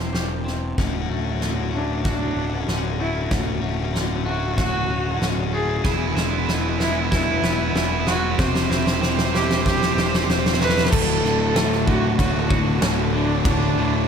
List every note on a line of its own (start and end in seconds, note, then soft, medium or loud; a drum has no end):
0.00 0.13 G3 medium
0.00 0.44 C4 medium
0.00 0.45 E4 medium
0.00 0.72 E4 medium
0.00 0.12 G4 medium
0.00 0.75 A4 medium
0.00 0.75 C5 medium
0.00 0.77 C5 medium
0.00 0.75 G5 medium
0.13 0.73 E1 medium
0.13 0.77 G4 medium
0.13 snare medium
0.45 0.77 C4 medium
0.45 snare soft
0.77 1.07 D1 medium
0.77 2.36 D2 medium
0.77 0.85 C#4 medium
0.77 5.82 F#4 medium
0.77 0.87 F#4 medium
0.77 8.35 F#5 medium
0.77 kick loud
0.77 snare soft
0.86 0.93 C#4 soft
0.86 0.94 F#4 soft
0.94 1.01 C#4 soft
0.94 1.01 F#4 medium
1.01 1.09 C#4 soft
1.01 1.09 F#4 medium
1.09 2.32 D1 medium
1.09 1.71 A3 medium
1.09 1.16 C#4 soft
1.09 1.15 F#4 medium
1.16 1.24 C#4 soft
1.16 1.23 F#4 medium
1.24 1.32 C#4 medium
1.24 1.32 F#4 medium
1.32 1.39 C#4 soft
1.32 1.40 F#4 medium
1.40 2.67 D3 medium
1.40 1.46 C#4 soft
1.40 1.48 F#4 medium
1.40 snare soft
1.47 1.54 C#4 soft
1.47 1.55 F#4 medium
1.54 1.62 C#4 medium
1.54 1.63 F#4 medium
1.63 1.70 C#4 soft
1.63 1.70 F#4 medium
1.70 2.99 A3 medium
1.70 1.78 C#4 soft
1.70 1.77 F#4 medium
1.74 2.03 D4 medium
1.74 1.85 F#4 medium
1.78 1.85 C#4 soft
1.85 1.92 C#4 medium
1.85 1.93 F#4 medium
1.92 2.00 C#4 soft
1.92 2.00 F#4 medium
2.00 2.07 C#4 medium
2.00 2.08 F#4 medium
2.00 3.63 F#4 medium
2.05 2.15 C#4 soft
2.05 2.64 D4 loud
2.05 2.15 F#4 medium
2.05 kick loud
2.05 snare medium
2.16 2.22 C#4 medium
2.16 2.23 F#4 medium
2.23 2.30 C#4 soft
2.23 2.31 F#4 medium
2.30 2.37 C#4 soft
2.30 2.38 F#4 medium
2.35 2.64 D1 medium
2.35 2.45 C#4 soft
2.35 2.46 F#4 medium
2.46 2.53 C#4 soft
2.46 2.54 F#4 medium
2.53 2.60 C#4 soft
2.53 2.61 F#4 medium
2.60 2.68 C#4 soft
2.60 2.69 F#4 medium
2.67 3.27 D1 medium
2.67 3.93 D3 medium
2.67 2.76 C#4 soft
2.67 2.77 F#4 medium
2.67 snare medium
2.76 2.83 C#4 soft
2.76 2.84 F#4 medium
2.84 2.91 C#4 soft
2.84 2.92 F#4 medium
2.92 2.99 C#4 soft
2.92 3.00 F#4 medium
2.99 3.61 A3 medium
2.99 3.06 C#4 soft
2.99 3.29 E4 medium
2.99 3.07 F#4 soft
3.07 3.13 C#4 soft
3.07 3.14 F#4 medium
3.14 3.21 C#4 soft
3.14 3.22 F#4 medium
3.21 3.29 C#4 soft
3.21 3.30 F#4 medium
3.30 3.61 D1 medium
3.30 4.90 D2 medium
3.30 3.38 C#4 medium
3.30 3.39 F#4 medium
3.30 kick loud
3.30 snare medium
3.38 3.45 C#4 medium
3.38 3.47 F#4 medium
3.45 3.53 C#4 medium
3.45 3.54 F#4 medium
3.54 3.61 C#4 medium
3.54 3.61 F#4 medium
3.61 4.85 D1 medium
3.61 4.24 A3 medium
3.61 3.69 C#4 medium
3.61 3.69 F#4 medium
3.69 3.75 C#4 medium
3.69 3.77 F#4 medium
3.76 3.84 C#4 medium
3.76 3.84 F#4 medium
3.84 3.92 C#4 medium
3.84 3.92 F#4 medium
3.93 5.20 D3 medium
3.93 4.00 C#4 medium
3.93 4.00 F#4 medium
3.93 snare medium
4.00 4.07 C#4 medium
4.00 4.08 F#4 medium
4.07 4.15 C#4 medium
4.07 4.16 F#4 medium
4.15 4.23 C#4 medium
4.15 4.24 F#4 medium
4.23 5.52 A3 medium
4.23 4.31 C#4 medium
4.23 4.30 F#4 medium
4.23 4.56 F#4 medium
4.31 4.38 C#4 medium
4.31 4.38 F#4 medium
4.38 4.46 C#4 medium
4.38 4.47 F#4 medium
4.47 4.53 C#4 medium
4.47 4.54 F#4 medium
4.54 4.61 C#4 medium
4.54 4.62 F#4 medium
4.54 5.85 F#4 medium
4.58 4.69 C#4 medium
4.58 5.18 F#4 loud
4.58 kick loud
4.58 snare medium
4.63 4.70 F#4 medium
4.69 4.76 C#4 medium
4.69 4.78 F#4 medium
4.76 4.84 C#4 medium
4.76 4.85 F#4 medium
4.85 5.18 D1 medium
4.85 4.92 C#4 medium
4.85 4.93 F#4 medium
4.90 5.85 C#4 medium
4.90 5.00 C#4 medium
4.90 5.00 F#4 medium
5.00 5.07 C#4 medium
5.00 5.07 F#4 medium
5.08 5.15 C#4 medium
5.08 5.15 F#4 medium
5.15 5.22 C#4 medium
5.15 5.23 F#4 medium
5.20 5.80 D1 medium
5.20 5.85 D3 medium
5.20 5.30 C#4 medium
5.20 5.31 F#4 medium
5.20 snare medium
5.30 5.38 C#4 medium
5.30 5.38 F#4 medium
5.39 5.45 C#4 medium
5.39 5.46 F#4 medium
5.46 5.53 C#4 medium
5.46 5.54 F#4 medium
5.53 5.85 A3 medium
5.53 5.61 C#4 medium
5.53 5.62 F#4 medium
5.53 5.83 G#4 loud
5.63 5.69 C#4 medium
5.63 5.69 F#4 medium
5.69 5.75 C#4 soft
5.69 5.77 F#4 medium
5.76 5.83 C#4 medium
5.76 5.85 F#4 medium
5.84 6.14 E1 medium
5.84 7.43 E2 medium
5.84 5.92 B3 medium
5.84 8.36 E4 medium
5.84 5.93 E4 medium
5.84 8.36 B4 medium
5.84 8.36 G#5 medium
5.84 kick loud
5.84 snare medium
5.93 5.99 B3 medium
5.93 5.99 E4 medium
5.99 6.07 B3 medium
5.99 6.07 E4 medium
6.07 6.15 B3 soft
6.07 6.14 E4 medium
6.15 7.39 E1 medium
6.15 6.78 G#3 medium
6.15 6.23 B3 medium
6.15 6.23 E4 medium
6.15 snare medium
6.23 6.30 B3 medium
6.23 6.31 E4 medium
6.31 6.38 B3 medium
6.31 6.38 E4 medium
6.39 6.46 B3 medium
6.39 6.46 E4 medium
6.46 7.74 E3 medium
6.46 6.54 B3 medium
6.46 6.54 E4 medium
6.46 snare medium
6.54 6.61 B3 medium
6.54 6.61 E4 medium
6.61 6.69 B3 medium
6.61 6.69 E4 medium
6.70 6.77 B3 medium
6.70 6.77 E4 medium
6.78 8.05 G#3 medium
6.78 6.84 B3 medium
6.78 6.84 E4 medium
6.78 7.10 E4 loud
6.78 snare medium
6.84 6.92 B3 medium
6.84 6.92 E4 medium
6.92 6.99 B3 medium
6.92 7.00 E4 medium
6.99 7.07 B3 medium
6.99 7.07 E4 medium
7.07 7.15 B3 medium
7.07 7.15 E4 medium
7.11 7.22 B3 medium
7.11 8.38 E4 medium
7.11 7.72 E4 loud
7.11 kick loud
7.11 snare medium
7.17 7.22 E4 medium
7.22 7.30 B3 medium
7.22 7.30 E4 medium
7.31 7.37 B3 medium
7.31 7.37 E4 medium
7.37 7.45 B3 medium
7.37 7.45 E4 medium
7.42 7.72 E1 medium
7.42 8.38 B3 medium
7.42 7.53 B3 medium
7.42 snare loud
7.47 7.54 E4 medium
7.53 7.61 B3 medium
7.53 7.61 E4 medium
7.61 7.68 B3 medium
7.61 7.69 E4 medium
7.69 7.77 B3 medium
7.69 7.77 E4 medium
7.74 8.34 E1 medium
7.74 8.39 E3 medium
7.74 7.83 B3 medium
7.74 7.85 E4 medium
7.74 snare medium
7.84 7.92 B3 medium
7.84 7.92 E4 medium
7.93 8.00 B3 soft
7.93 7.99 E4 medium
8.00 8.07 B3 medium
8.00 8.07 E4 medium
8.07 8.38 G#3 medium
8.07 8.14 B3 medium
8.07 8.16 E4 medium
8.07 8.37 F#4 loud
8.07 snare medium
8.15 8.22 B3 medium
8.15 8.23 E4 medium
8.24 8.30 B3 soft
8.24 8.31 E4 medium
8.30 8.38 B3 medium
8.30 8.39 E4 medium
8.38 8.68 E1 medium
8.38 9.97 C3 medium
8.38 10.89 C4 medium
8.38 10.89 E4 medium
8.38 8.46 G4 medium
8.38 10.89 A4 medium
8.38 8.47 C5 loud
8.38 10.89 G5 medium
8.38 kick loud
8.38 snare loud
8.47 8.54 G4 medium
8.47 8.55 C5 medium
8.55 8.62 G4 medium
8.55 8.63 C5 medium
8.55 snare loud
8.63 8.69 G4 medium
8.63 8.70 C5 medium
8.69 9.92 E1 medium
8.69 9.31 E4 medium
8.69 8.77 G4 medium
8.69 8.78 C5 medium
8.69 snare medium
8.77 8.83 G4 medium
8.77 8.87 C5 medium
8.84 8.92 G4 medium
8.84 8.93 C5 medium
8.84 snare loud
8.93 9.00 G4 medium
8.93 9.01 C5 medium
9.00 10.27 C4 medium
9.00 9.07 G4 medium
9.00 9.09 C5 medium
9.00 snare medium
9.08 9.15 G4 medium
9.08 9.16 C5 medium
9.16 9.23 G4 medium
9.16 9.24 C5 medium
9.16 snare loud
9.23 9.31 G4 medium
9.23 9.32 C5 medium
9.31 10.58 E4 medium
9.31 9.37 G4 medium
9.31 9.64 G4 loud
9.31 9.39 C5 medium
9.31 snare loud
9.38 9.45 G4 medium
9.38 9.47 C5 medium
9.47 9.53 G4 medium
9.47 9.54 C5 medium
9.47 snare loud
9.54 9.61 G4 medium
9.54 9.62 C5 medium
9.62 9.68 G4 medium
9.62 9.70 C5 medium
9.66 10.25 G4 loud
9.66 9.76 G4 medium
9.66 kick loud
9.66 snare loud
9.72 9.77 C5 medium
9.77 9.84 G4 medium
9.77 9.85 C5 medium
9.82 9.92 G4 medium
9.82 9.93 C5 medium
9.82 snare medium
9.92 10.25 E1 medium
9.92 9.99 G4 medium
9.92 10.01 C5 medium
9.96 10.92 G4 medium
9.96 10.07 G4 medium
9.96 snare loud
10.01 10.08 C5 medium
10.08 10.15 G4 medium
10.08 10.16 C5 medium
10.14 10.22 G4 medium
10.14 10.24 C5 medium
10.14 snare loud
10.22 10.30 G4 medium
10.22 10.30 C5 medium
10.28 10.88 E1 medium
10.28 10.92 C4 medium
10.28 10.37 G4 medium
10.28 10.38 C5 medium
10.28 snare loud
10.38 10.45 G4 medium
10.38 10.47 C5 medium
10.46 10.53 G4 medium
10.46 10.53 C5 medium
10.46 snare loud
10.53 10.60 G4 medium
10.53 10.61 C5 medium
10.53 snare loud
10.59 10.91 E4 medium
10.59 10.68 G4 medium
10.59 10.92 B4 loud
10.59 10.69 C5 medium
10.59 snare loud
10.69 10.76 G4 medium
10.69 10.77 C5 medium
10.69 snare loud
10.77 10.83 G4 soft
10.77 10.84 C5 medium
10.77 snare loud
10.84 10.91 G4 medium
10.84 10.92 C5 medium
10.84 snare loud
10.91 11.21 D1 loud
10.91 12.49 D2 medium
10.91 11.23 D2 medium
10.91 11.23 A2 medium
10.91 11.24 D3 loud
10.91 14.08 F#4 medium
10.91 11.86 A4 loud
10.91 14.08 C#5 medium
10.91 14.08 F#5 medium
10.91 14.08 A5 medium
10.91 kick loud
10.91 crash loud
10.91 crash medium
11.23 12.14 D1 medium
11.23 11.55 D2 medium
11.23 12.81 A2 medium
11.23 11.55 A2 medium
11.23 11.57 D3 medium
11.23 snare soft
11.54 11.87 D2 medium
11.54 11.86 A2 medium
11.54 11.88 D3 loud
11.54 13.13 A3 medium
11.54 snare loud
11.54 crash medium
11.72 snare soft
11.86 12.17 D2 medium
11.86 12.18 A2 medium
11.86 13.12 D3 medium
11.86 12.18 D3 loud
11.86 12.16 F#4 medium
11.86 kick medium
12.18 12.78 D1 medium
12.18 12.49 D2 medium
12.18 12.50 A2 loud
12.18 12.51 D3 loud
12.18 12.78 F#4 medium
12.18 kick medium
12.18 crash medium
12.49 12.80 D2 medium
12.49 12.82 A2 medium
12.49 12.82 D3 medium
12.49 14.08 F#4 medium
12.49 kick loud
12.81 13.40 D1 medium
12.81 13.13 D2 medium
12.81 13.13 A2 loud
12.81 13.14 D3 medium
12.81 snare loud
12.81 crash medium
13.13 13.45 D2 medium
13.13 13.46 A2 medium
13.13 14.08 D3 medium
13.13 13.46 D3 medium
13.13 13.44 D4 medium
13.44 13.74 D1 loud
13.44 14.08 D2 medium
13.44 13.77 D2 medium
13.44 13.78 A2 loud
13.44 13.78 D3 loud
13.44 14.08 D4 loud
13.44 kick loud
13.44 crash medium
13.75 14.08 D1 loud
13.75 14.08 D2 medium
13.75 14.08 A2 medium
13.75 14.08 D3 medium